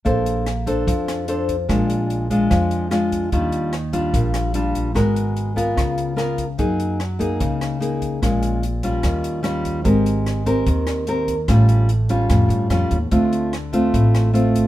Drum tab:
HH |xxxxxxxx|xxxxxxxx|xxxxxxxx|xxxxxxxx|
SD |--r--r--|r---r-r-|--r--r--|r---r-r-|
BD |o--oo--o|o--oo--o|o--oo--o|o--oo--o|

HH |xxxxxxxx|xxxxxxxx|xxxxxxxx|xxxxxxxx|
SD |--r--r--|r---r-r-|--r--r--|r---r-r-|
BD |o--oo--o|o--oo--o|o--oo--o|o--oo--o|

HH |xxxxxxxx|
SD |--r--r--|
BD |o--oo--o|